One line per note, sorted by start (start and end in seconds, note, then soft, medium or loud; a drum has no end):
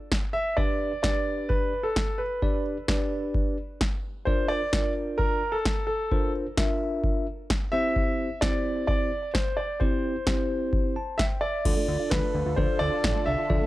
0.12 kick loud
0.12 snare loud
0.33 0.58 E5 medium
0.57 0.92 D4 medium
0.57 0.92 G4 medium
0.57 0.92 B4 medium
0.57 1.01 D5 medium
0.57 0.92 D5 medium
0.57 kick loud
1.03 1.72 D4 medium
1.03 1.72 G4 medium
1.03 1.72 B4 medium
1.03 1.51 D5 medium
1.03 1.72 D5 medium
1.03 kick loud
1.03 snare loud
1.49 1.85 B4 medium
1.49 kick loud
1.83 2.20 A4 medium
1.96 kick loud
1.96 snare loud
2.18 2.62 B4 medium
2.42 2.76 D4 medium
2.42 2.76 G4 medium
2.42 2.76 B4 medium
2.42 2.76 D5 medium
2.42 kick loud
2.88 3.57 D4 medium
2.88 3.57 G4 medium
2.88 3.57 B4 medium
2.88 3.57 D5 medium
2.88 kick loud
2.88 snare loud
3.34 kick loud
3.81 kick loud
3.81 snare loud
4.25 4.61 D4 medium
4.25 4.61 F4 medium
4.25 4.61 A#4 medium
4.25 4.50 C5 medium
4.25 4.61 D5 medium
4.25 kick loud
4.48 4.92 D5 loud
4.73 5.41 D4 medium
4.73 5.41 F4 medium
4.73 5.41 A#4 medium
4.73 5.41 D5 medium
4.73 kick loud
4.73 snare loud
5.18 5.54 A#4 loud
5.18 kick loud
5.52 5.85 A4 medium
5.65 kick loud
5.65 snare loud
5.87 6.30 A4 medium
6.12 6.46 D4 medium
6.12 6.46 F4 medium
6.12 6.46 A#4 medium
6.12 6.46 C5 medium
6.12 kick loud
6.57 7.26 D4 medium
6.57 7.26 F4 medium
6.57 7.26 A#4 medium
6.57 7.26 E5 medium
6.57 kick loud
6.57 snare loud
7.04 kick loud
7.50 kick loud
7.50 snare loud
7.72 8.28 C4 medium
7.72 8.28 E4 medium
7.72 8.28 G4 medium
7.72 8.28 C5 medium
7.72 8.44 E5 loud
7.96 kick loud
8.41 9.10 C4 medium
8.41 9.10 E4 medium
8.41 9.10 G4 medium
8.41 9.10 C5 medium
8.41 8.86 D5 medium
8.41 kick loud
8.41 snare loud
8.87 9.31 D5 medium
8.87 kick loud
9.34 9.58 C5 medium
9.34 kick loud
9.34 snare loud
9.57 9.81 D5 medium
9.80 10.15 C4 medium
9.80 10.15 E4 medium
9.80 10.15 G4 medium
9.80 11.38 C5 medium
9.80 10.15 C5 medium
9.80 kick loud
10.27 10.95 C4 medium
10.27 10.95 E4 medium
10.27 10.95 G4 medium
10.27 10.95 C5 medium
10.27 kick loud
10.27 snare loud
10.73 kick loud
10.96 11.18 A5 medium
11.18 11.23 E5 loud
11.18 11.41 G5 medium
11.18 kick loud
11.18 snare loud
11.41 12.13 D5 loud
11.41 11.64 E5 medium
11.65 11.75 D2 loud
11.65 13.67 D3 medium
11.65 11.75 F3 medium
11.65 12.33 D4 medium
11.65 13.67 D4 medium
11.65 12.33 F4 medium
11.65 13.67 F4 medium
11.65 12.33 A4 medium
11.65 13.67 A4 medium
11.65 12.33 D5 medium
11.65 kick loud
11.65 crash medium
11.77 11.86 A3 medium
11.88 11.98 D2 medium
11.88 11.98 D4 medium
12.00 12.09 F4 medium
12.10 12.21 D2 loud
12.10 12.21 F3 medium
12.10 12.58 B4 medium
12.10 kick loud
12.10 snare loud
12.23 12.32 A3 medium
12.35 12.44 D2 loud
12.35 12.44 D4 medium
12.46 12.55 D2 loud
12.46 12.55 F4 medium
12.56 12.67 D2 loud
12.56 12.67 F3 medium
12.56 13.26 D4 medium
12.56 13.26 F4 medium
12.56 13.26 A4 medium
12.56 12.81 C5 medium
12.56 13.26 D5 medium
12.56 kick loud
12.79 12.90 D2 loud
12.79 12.90 D4 medium
12.79 13.28 D5 loud
12.92 13.02 F4 medium
13.04 13.13 A1 loud
13.04 13.13 F3 medium
13.04 kick loud
13.04 snare loud
13.15 13.25 A3 medium
13.26 13.36 C2 medium
13.26 13.36 D4 medium
13.26 13.67 E5 medium
13.39 13.48 F4 medium
13.50 13.59 D2 loud
13.50 13.59 F3 medium
13.50 13.67 D4 medium
13.50 13.67 F4 medium
13.50 13.67 A4 medium
13.50 13.67 D5 medium
13.50 kick loud
13.62 13.67 A3 medium